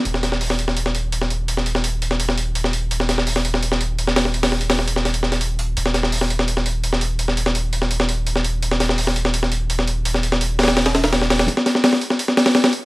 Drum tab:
HH |o---o---o---o---o---o---o---o---|o---o---o---o---o---o---o---o---|o---o---o---o---o---o---o---o---|o-o---o-o---o---o-o---o-o---o---|
SD |--o-o-o---o---o---o-------o-----|--o---o-------o---o-------o-----|--o-o-o---o---o---o-------o-o-o-|--o-o---o-o---o-o---o-o---------|
BD |--------------------------------|--------------------------------|--------------------------------|--------------------------------|

HH |o---o---o---o---o---o---o---o---|o---o---o---o---o---o---o---o---|o---o---o---o---o---o---o---o---|o---o---o---ooo-o-o-o-o-o---o-o-|
SD |--o-o-o---o---o---o-------o-----|--o---o-------o---o-------o-----|--o-o-o---o---o---o-------o-----|--o---o-----ooo-o-o-o-o-o-o-o-o-|
BD |--------------------------------|--------------------------------|--------------------------------|--------------------------------|

HH |o---o---o---o---o---o-o-o-o-o---|
SD |--o-o-o-o-o---o---o-o-o-o-o-----|
BD |o-------------------------------|